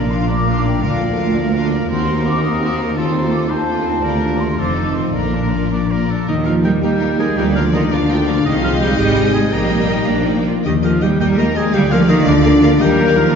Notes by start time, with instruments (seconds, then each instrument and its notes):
Already playing: double bass section A#1, cello section A#2, harp A#2 F3 F4, viola section A#3, french horn section A#3 D4, violin section D4 D5, clarinet D4, oboe A#4, flute section A#5
0.10 harp D4, viola section D4, violin section F4 F5, flute section C6
0.28 french horn section A#3 D4, viola section A#3, clarinet D4, violin section D4 D5, harp F4, oboe A#4, flute section D6
0.47 viola section D4, violin section F4 F5, harp A#4
0.56 clarinet D#4
0.65 viola section A#3, violin section D4 D5, harp F4, flute section G5
0.82 cello section D2, double bass section D2, harp D3, french horn section A#3 F4, viola section D4, violin section F4 F5, clarinet F4, oboe A#4, flute section F5
1.00 harp A#3, viola section A#3, violin section D4 D5
1.18 harp D4, viola section D4, violin section F4 F5
1.36 viola section A#3, violin section D4 D5, harp F4
1.54 viola section D4, violin section F4 F5, harp A#4
1.71 viola section A#3, violin section D4 D5, harp F4
1.89 cello section D#2, double bass section D#2, harp D#3, french horn section A#3 F#4, viola section C4, clarinet D#4, violin section F#4 A#4, oboe A#4, flute section C6
2.08 viola section A#3, harp A#3, violin section D#4 C5
2.25 harp C4, viola section C4, violin section F#4 A#4, flute section D6
2.42 viola section A#3, french horn section A#3 F#4, clarinet C4, violin section D#4 C5, harp F#4, flute section D#6
2.60 viola section C4, violin section F#4 A#4
2.78 viola section A#3, violin section D#4 C5, harp F#4, flute section A#5
2.95 harp D#3, viola section A3, french horn section C4 F4, clarinet F4, violin section F4 A4, oboe A4, flute section C6
3.13 harp A3, viola section C4, violin section D#4 C5
3.31 viola section A3, harp C4, violin section F4 A4, flute section D6
3.48 french horn section C4 F4, viola section C4, clarinet D#4, violin section D#4 C5, harp F4, oboe C5, flute section A5
3.67 viola section A3, clarinet D4, violin section F4 A4, harp C5
3.85 clarinet C4, viola section C4, violin section D#4 C5, harp F4
4.02 cello section D2, double bass section D2, harp D3, french horn section A#3 F4, viola section A#3, violin section F4 D5, clarinet G4, oboe A#4, flute section A#5
4.21 harp D4, viola section D4, violin section D4 A#4
4.39 viola section A#3, violin section F4 D5, harp A#4, flute section C6
4.57 double bass section F1, cello section F2, harp F3, french horn section A3 D#4, viola section C4, clarinet F4, violin section F4 C5, oboe A4, flute section D6
4.75 violin section D#4 A4, viola section D#4
4.94 viola section C4, harp F4 A4, violin section F4 C5, flute section C6
5.13 double bass section A#1, harp A#2, cello section A#2, french horn section A#3 D4, viola section A#3, clarinet D4, violin section F4 D5, oboe A#4, flute section A#5
5.33 harp F3, viola section D4, violin section D4 A#4
5.52 viola section A#3, harp D4, violin section F4 D5
5.71 viola section D4, violin section D4 A#4, harp F4, oboe D5
5.89 viola section A#3, violin section F4 D5, harp A#4, oboe A#4
6.09 viola section D4, violin section D4 A#4, harp F4, oboe A4
6.27 double bass section D#2, harp D#3, cello section D#3, viola section A#3 D#4, french horn section A#3 D#4, clarinet D#4, violin section A#4, oboe D#5
6.45 cello section F3, viola section A#3 D#4, harp D#4, clarinet F4, violin section A#4, oboe F5
6.64 cello section G3, viola section A#3 D#4, clarinet G4, violin section A#4, harp A#4, oboe G5
6.83 double bass section D#2, cello section G3, viola section A#3 D#4, harp D#4, clarinet G4, violin section A#4, oboe G5
7.00 viola section A#3 D#4, violin section A#4, harp D#5
7.19 cello section G#3, viola section A#3 D#4, clarinet G#4, violin section A#4, oboe G#5
7.37 double bass section D2, harp D3, viola section F3 F4, cello section G3, french horn section D4, clarinet G4, violin section A#4 D5, oboe G5
7.55 cello section F3, viola section F3 F4, harp A#3, clarinet F4, violin section A#4, oboe F5
7.74 cello section D#3, viola section F3 F4, clarinet D#4, harp F4, violin section A#4, oboe D#5
7.91 double bass section D2, cello section D3, viola section F3 F4, clarinet D4, violin section A#4 F5, harp A#4, oboe D5
8.10 viola section F3 F4, harp F4, violin section A#4 G5
8.27 viola section F3 F4, violin section A#4 F5, harp A#4
8.45 double bass section C2, harp C3, cello section D#3, french horn section G#3 C4, viola section G#3 D#4, clarinet D#4, violin section D#5, oboe D#5
8.63 cello section F3, harp C4, clarinet F4, oboe F5
8.80 cello section G3, harp D#4, clarinet G4, oboe G5
8.97 double bass section G#1, cello section G3, clarinet G4, violin section D#5, oboe G5
9.16 harp C5
9.33 cello section G#3, clarinet G#4, harp G#4, oboe G#5
9.52 double bass section A#1, harp A#2, french horn section G3 D#4, viola section G3 D#4, cello section A#3, clarinet A#4, violin section D#5 G5, oboe A#5
9.71 harp G3
9.90 harp D#4
10.08 double bass section A#1, harp A#2, french horn section F3 D4, viola section D4, violin section D5
10.27 harp F3, viola section D#4
10.47 harp D4, viola section F4
10.65 double bass section D#2, harp D#3, cello section D#3, french horn section G3 D#4, viola section A#3 G4, clarinet D#4, violin section D#5, oboe D#5
10.83 cello section F3, viola section A#3 G4, harp D#4, clarinet F4, violin section D#5, oboe F5
11.01 cello section G3, viola section A#3 G4, clarinet G4, harp A#4, violin section D#5, oboe G5
11.20 double bass section D#2, cello section G3, viola section A#3 G4, clarinet G4, harp G4, violin section A#4 D#5, oboe G5
11.38 viola section A#3 G4, cello section A#3, clarinet A#4, violin section D#5, oboe A#5
11.55 cello section G#3, viola section A#3 G4, harp G4, clarinet G#4, violin section D#5, oboe G#5
11.73 double bass section D2, harp D3, cello section G3, french horn section A#3 F4, viola section A#3 A#4, clarinet G4, violin section D5 F5, oboe G5
11.91 cello section F3, harp A#3, viola section A#3 A#4, clarinet F4, violin section F5, oboe F5
12.09 cello section D#3, viola section A#3 A#4, clarinet D#4, harp F4, oboe D#5, violin section F5
12.25 double bass section D2, cello section D3, viola section A#3 A#4, clarinet D4, harp A#4, oboe D5, violin section F5
12.44 viola section A#3 A#4, violin section F5
12.63 viola section A#3 A#4, harp A#4, violin section F5
12.79 double bass section D#2, harp D#3, cello section G3, viola section A#3 A#4, french horn section D#4, clarinet G4, violin section A#4 D#5, oboe G5
13.07 violin section D5
13.17 cello section F3, harp D#4, clarinet F4, oboe F5